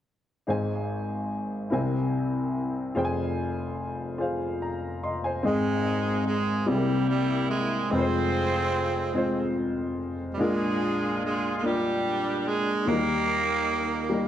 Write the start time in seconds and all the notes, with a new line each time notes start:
0.47 G#1 G#2 D#4 G#4 C5 G#5
1.70 C2 C3 E4 A#4 C5 G#5
2.95 F1 F2 F4 G#4 C5 G5
3.05 G#5
4.18 F4 G#4 C5 F5
4.62 A#5
5.03 D#5 C6
5.24 C5 G#5
5.43 G#1 G#2 G#3 C4 D#4 G#4 D#5
6.27 G#3 G#4
6.66 C2 C3 G3 C4 E4 G#4
6.71 A#3 E4 G4
6.77 A#4
7.10 G3
7.50 G#3 G#4
7.90 F1 F2 G#3 C4 F4 B4
7.95 F4 G#4 C5
8.00 C5
9.14 G#3 C4 F4 C5
10.34 G3 G#3
10.39 A#1 A#2 G#3 D4 F4 G#4 A#4
11.24 G#3 G#4
11.58 G#3 A#3
11.63 G3 D4 F4 G4 A#4
12.39 G3
12.47 G#3 G#4
12.85 D#2 D#3 F#3 A#3 D#4 G4 A#4
12.92 G3
14.10 G3 A#3 D#4 A#4